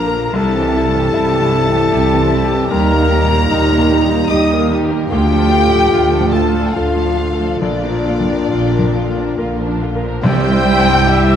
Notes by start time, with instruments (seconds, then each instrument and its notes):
Already playing: grand piano A#1 F2 D4 F4 A#4, double bass section A#1, cello section A#2, viola section D3 A#3, french horn section F3 D4, violin section D4 F4 A#5, clarinet A#4, flute A#5
0.07 grand piano A#4
0.32 grand piano C2, double bass section C2, cello section C3, french horn section G3 E4, viola section G3, violin section E4 A5, clarinet A4, flute A5
0.54 viola section E3, violin section C4 G4
0.61 grand piano E4
0.75 viola section G3, violin section E4
0.88 grand piano G2
0.94 viola section E3, violin section C4 G4
1.12 double bass section C2, cello section C3, viola section G3, violin section E4, grand piano E4
1.31 viola section E3, violin section C4 G4
1.40 grand piano G2
1.51 viola section G3, violin section E4
1.66 grand piano E4
1.71 viola section E3, violin section C4 G4
1.91 double bass section C2, cello section C3, viola section G3, violin section E4, grand piano G4
2.10 viola section E3, violin section C4 G4
2.18 grand piano C4
2.30 viola section G3, violin section E4
2.44 grand piano G4
2.52 viola section E3, violin section C4 G4
2.70 grand piano D#2, double bass section D#2, cello section D#2, viola section G3, french horn section D#4, violin section D#4 G4 A#5, clarinet A#4, flute A#5
2.90 viola section D#3 A#3, violin section A#3 A#4
2.98 grand piano D#4
3.11 viola section G3, violin section D#4 G4
3.25 grand piano A#2
3.30 viola section D#3 A#3, violin section A#3 A#4
3.49 cello section D#2, double bass section D#2, viola section G3, violin section D#4 G4, grand piano D#4
3.71 viola section D#3 A#3, violin section A#3 A#4
3.78 grand piano A#2
3.90 viola section G3, violin section D#4 G4
4.05 grand piano D#4
4.09 viola section D#3 A#3, violin section A#3 A#4
4.29 cello section D#2, double bass section D#2, viola section G3, violin section D#4 G4 D#6, grand piano G4, clarinet D#5, flute D#6
4.50 viola section D#3 A#3, violin section A#3 A#4
4.59 grand piano A#3
4.68 viola section G3, violin section D#4 G4
4.85 grand piano G4
4.90 viola section D#3 A#3, violin section A#3 A#4
5.09 cello section D2, grand piano D2, double bass section D2, viola section D3 A3, french horn section A3 F4, violin section F4 G5, clarinet G4, flute G5
5.30 viola section F3, violin section D4 A4
5.38 grand piano F4
5.50 viola section D3 A3, violin section F4
5.66 grand piano A2, violin section D4 A4
5.73 viola section F3
5.91 cello section D2, double bass section D2, viola section D3 A3, violin section F4, grand piano F4
6.12 viola section F3, violin section D4 A4
6.21 grand piano A2
6.32 viola section D3 A3, violin section F4 A5, clarinet A4, flute A5
6.48 grand piano F4
6.53 viola section F3, violin section D4 A4
6.74 cello section D2, double bass section D2, viola section D3 A3, french horn section A3 F4, violin section F4 F5, clarinet F4, grand piano A4, flute F5
6.96 viola section F3, violin section D4 A4
7.05 grand piano D4
7.17 viola section D3 A3, violin section F4
7.33 grand piano A4
7.38 viola section F3, violin section D4 A4
7.61 grand piano A#1, double bass section A#1, cello section A#2, viola section D3 A#3, french horn section A#3 F4, clarinet D4, violin section F4 D5, flute D5
7.83 viola section F3 D4, violin section D4 A#4
7.91 grand piano F4
8.06 viola section D3 A#3, violin section F4
8.20 grand piano F2
8.28 viola section F3 D4, violin section D4 A#4
8.50 double bass section A#1, cello section A#2, viola section D3 A#3, grand piano F4, violin section F4
8.72 viola section F3 D4, violin section D4 A#4
8.79 grand piano F2
8.95 viola section D3 A#3, violin section F4
9.10 grand piano F4
9.17 viola section F3 D4, violin section D4 A#4
9.37 double bass section A#1, cello section A#2, viola section D3 A#3, violin section F4, grand piano A#4
9.60 viola section F3 D4, violin section D4 A#4
9.67 grand piano D4
9.81 viola section D3 A#3, violin section F4
9.96 grand piano A#4
10.04 viola section F3 D4, violin section D4 A#4
10.23 grand piano C2, double bass section C2, timpani C3, french horn section G3 E4, cello section G3, violin section G3 G4 G5, clarinet G4, viola section C5, oboe G5, flute E6
10.46 violin section C4
10.51 grand piano E4
10.66 violin section E4
10.79 grand piano G2
10.86 violin section C4
11.07 violin section G3, grand piano E4, viola section E5
11.28 violin section C4